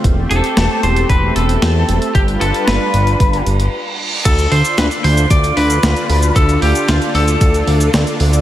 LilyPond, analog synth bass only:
\new Staff \with { instrumentName = "Analog synth bass" } { \clef bass \time 4/4 \key d \dorian \tempo 4 = 114 e,,8 e,,8 e,,8 e,,8 e,,8 e,,8 e,8 e,,8 | g,,8 g,,8 g,,8 g,,8 g,,8 g,,8 r4 | d,8 d,8 d,8 d,8 d,8 d,8 d,8 d,8 | d,8 d,8 d,8 d,8 d,8 d,8 d,8 d,8 | }